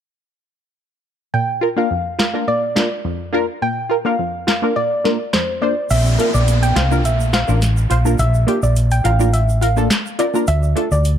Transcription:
1.34 1.77 A#2 medium
1.34 1.47 G5 loud
1.61 1.68 F4 medium
1.61 1.69 A#4 medium
1.76 1.88 A#3 medium
1.76 1.88 D4 medium
1.76 1.88 F4 medium
1.76 1.88 A#4 medium
1.76 2.02 F5 medium
1.91 2.34 F2 medium
2.19 2.25 F4 medium
2.19 2.26 A#4 medium
2.19 2.44 F5 medium
2.19 snare loud
2.19 clap medium
2.34 2.45 A#3 medium
2.34 2.45 D4 medium
2.34 2.45 F4 medium
2.34 2.46 A#4 medium
2.48 2.91 A#2 medium
2.48 2.89 D5 loud
2.76 2.88 A#3 medium
2.76 2.88 D4 medium
2.76 2.89 F4 medium
2.76 2.89 A#4 medium
2.76 snare loud
2.76 clap medium
3.05 3.48 F2 medium
3.33 3.45 A#3 medium
3.33 3.45 D4 medium
3.33 3.46 F4 medium
3.33 3.46 A#4 loud
3.62 4.05 A#2 medium
3.62 3.75 G5 loud
3.89 3.96 F4 medium
3.89 3.97 A#4 medium
4.05 4.16 A#3 medium
4.05 4.16 D4 medium
4.05 4.17 F4 medium
4.05 4.17 A#4 medium
4.05 4.31 F5 medium
4.19 4.62 F2 medium
4.47 4.54 F4 medium
4.47 4.54 A#4 medium
4.47 4.73 F5 medium
4.47 snare loud
4.47 clap medium
4.62 4.73 A#3 medium
4.62 4.74 D4 medium
4.62 4.74 F4 medium
4.62 4.74 A#4 medium
4.76 5.20 A#2 medium
4.76 5.17 D5 loud
5.04 5.17 A#3 medium
5.04 5.17 D4 medium
5.04 5.17 F4 medium
5.04 5.18 A#4 medium
5.04 snare medium
5.33 5.77 F2 medium
5.33 5.47 C5 medium
5.33 snare loud
5.33 clap medium
5.62 5.74 A#3 medium
5.62 5.74 D4 medium
5.62 5.74 F4 medium
5.62 5.75 C5 medium
5.62 5.75 D5 medium
5.90 6.16 A#1 loud
5.90 6.04 E5 loud
5.90 closed hi-hat medium
5.90 crash medium
5.90 downlifter medium
5.90 shaker medium
6.06 shaker soft
6.19 6.31 A#3 medium
6.19 6.31 D4 medium
6.19 6.32 F4 medium
6.19 6.32 A#4 medium
6.19 closed hi-hat medium
6.34 6.71 A#1 medium
6.34 6.46 D5 medium
6.34 shaker medium
6.48 closed hi-hat medium
6.48 shaker medium
6.63 6.75 G5 medium
6.63 closed hi-hat medium
6.63 shaker soft
6.76 7.05 C2 medium
6.76 6.82 F4 medium
6.76 6.83 C5 medium
6.76 6.90 F5 medium
6.76 snare loud
6.76 clap medium
6.76 closed hi-hat medium
6.76 shaker medium
6.91 7.02 A#3 medium
6.91 7.02 D4 medium
6.91 7.02 F4 medium
6.91 7.03 A#4 medium
6.91 shaker medium
7.05 7.43 A#1 loud
7.05 7.18 E5 medium
7.05 closed hi-hat medium
7.05 shaker medium
7.20 shaker medium
7.33 7.39 F4 medium
7.33 7.40 C5 medium
7.33 7.47 F5 medium
7.33 snare loud
7.33 clap loud
7.33 closed hi-hat medium
7.33 shaker soft
7.48 7.86 A1 medium
7.48 7.59 A#3 medium
7.48 7.59 D4 medium
7.48 7.60 F4 medium
7.48 7.60 A#4 medium
7.48 shaker medium
7.62 snare medium
7.62 closed hi-hat medium
7.62 shaker medium
7.77 shaker soft
7.90 8.16 A#1 medium
7.90 7.96 F4 medium
7.90 7.97 C5 medium
7.90 8.04 F5 medium
7.90 closed hi-hat medium
7.90 shaker medium
8.05 8.16 A#3 medium
8.05 8.16 D4 medium
8.05 8.17 F4 medium
8.05 8.17 A#4 medium
8.05 shaker medium
8.19 8.44 A#1 loud
8.19 8.33 E5 loud
8.19 closed hi-hat medium
8.19 shaker medium
8.34 shaker soft
8.47 8.59 A#3 medium
8.47 8.60 D4 medium
8.47 8.60 F4 medium
8.47 8.60 G4 medium
8.47 closed hi-hat medium
8.63 9.00 A#1 medium
8.63 8.75 D5 medium
8.63 shaker medium
8.76 closed hi-hat medium
8.76 shaker medium
8.91 9.03 G5 medium
8.91 closed hi-hat medium
8.91 shaker medium
9.04 9.87 A1 medium
9.04 9.11 F4 medium
9.04 9.11 A#4 medium
9.04 9.18 F5 medium
9.04 closed hi-hat medium
9.04 shaker medium
9.19 9.30 A#3 medium
9.19 9.31 D4 medium
9.19 9.31 F4 medium
9.19 9.31 A#4 medium
9.19 shaker medium
9.33 9.47 E5 medium
9.33 closed hi-hat medium
9.33 shaker medium
9.49 shaker medium
9.61 9.68 F4 medium
9.61 9.69 A#4 medium
9.61 9.75 F5 medium
9.61 closed hi-hat medium
9.61 shaker soft
9.77 9.88 A#3 medium
9.77 9.88 D4 medium
9.77 9.88 F4 medium
9.77 9.88 A4 medium
9.77 shaker medium
9.91 snare loud
9.91 clap medium
9.91 closed hi-hat medium
9.91 shaker medium
10.06 shaker soft
10.19 10.25 F4 medium
10.19 10.26 A#4 medium
10.19 10.32 D5 medium
10.19 closed hi-hat medium
10.19 high timbale medium
10.19 shaker medium
10.34 10.45 A#3 medium
10.34 10.45 D4 medium
10.34 10.45 F4 medium
10.34 10.46 A#4 medium
10.34 shaker medium
10.47 10.73 D2 loud
10.47 10.61 E5 loud
10.47 closed hi-hat medium
10.47 shaker medium
10.63 shaker soft
10.76 10.88 A3 medium
10.76 10.88 D4 medium
10.76 10.89 F4 medium
10.76 10.89 A4 medium
10.76 closed hi-hat medium
10.91 11.18 D2 medium
10.91 11.03 D5 medium
10.91 shaker medium
11.05 closed hi-hat medium
11.05 shaker medium

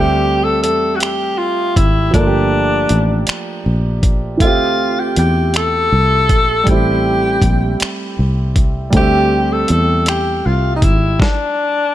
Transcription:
0.00 0.64 D2 medium
0.00 2.08 G3 medium
0.00 2.09 A3 soft
0.00 2.11 C4 medium
0.00 0.45 G4 loud
0.00 2.16 G4 medium
0.00 2.12 E5 medium
0.44 0.62 A4 medium
0.63 1.40 E2 medium
0.63 0.97 A4 medium
0.63 closed hi-hat medium
0.95 1.02 F#4 medium
1.00 1.40 G4 medium
1.00 finger snap loud
1.00 closed hi-hat medium
1.38 1.79 C2 medium
1.38 1.78 F4 medium
1.76 2.11 G#1 medium
1.76 2.13 E4 medium
1.76 kick medium
1.76 closed hi-hat medium
2.11 2.86 G1 medium
2.11 4.35 F3 medium
2.11 4.36 A3 medium
2.11 3.23 D4 medium
2.11 kick loud
2.11 closed hi-hat medium
2.16 4.38 A#3 medium
2.16 4.39 D4 soft
2.21 2.24 F4 medium
2.27 4.43 G4 medium
2.89 3.24 A1 medium
2.89 closed hi-hat medium
3.27 finger snap loud
3.27 muted fingered electric bass stroke soft
3.27 closed hi-hat medium
3.66 4.41 A#1 medium
4.03 kick medium
4.03 closed hi-hat medium
4.37 5.12 D2 medium
4.37 4.46 E3 soft
4.37 6.63 A3 medium
4.37 kick medium
4.37 closed hi-hat medium
4.41 6.64 C4 soft
4.41 5.01 F4 medium
4.41 6.65 F4 medium
4.41 6.65 E5 medium
4.47 6.66 G4 medium
5.00 5.17 G4 medium
5.16 5.88 E2 medium
5.16 5.58 G4 medium
5.16 closed hi-hat medium
5.54 6.70 A4 medium
5.54 finger snap medium
5.54 closed hi-hat medium
5.92 6.30 C2 medium
6.29 6.64 A#1 medium
6.29 kick medium
6.29 closed hi-hat medium
6.64 7.39 A1 medium
6.64 8.88 G3 medium
6.64 8.89 A3 medium
6.64 kick loud
6.64 closed hi-hat medium
6.69 8.90 C4 soft
6.69 8.91 E4 medium
6.69 7.81 G4 medium
6.73 8.93 G4 medium
7.42 7.76 A#1 medium
7.42 kick medium
7.42 closed hi-hat medium
7.80 finger snap loud
7.80 muted fingered electric bass stroke soft
7.80 closed hi-hat medium
8.19 8.90 C2 medium
8.56 kick medium
8.56 closed hi-hat medium
8.90 9.65 D2 loud
8.90 11.14 G3 medium
8.90 11.16 A3 medium
8.90 kick loud
8.90 closed hi-hat medium
8.95 11.16 C4 medium
8.95 9.54 G4 loud
8.95 11.18 E5 medium
8.99 11.19 G4 medium
9.52 9.70 A4 medium
9.68 10.41 E2 medium
9.68 10.06 A4 medium
9.68 closed hi-hat medium
10.06 10.47 G4 medium
10.06 finger snap loud
10.06 closed hi-hat medium
10.46 10.84 C2 medium
10.46 10.75 F4 medium
10.76 10.85 D#4 medium
10.82 11.16 G#1 medium
10.82 11.21 E4 medium
10.82 kick medium
10.82 closed hi-hat medium
11.20 11.95 D4 medium
11.20 kick loud
11.20 snare medium

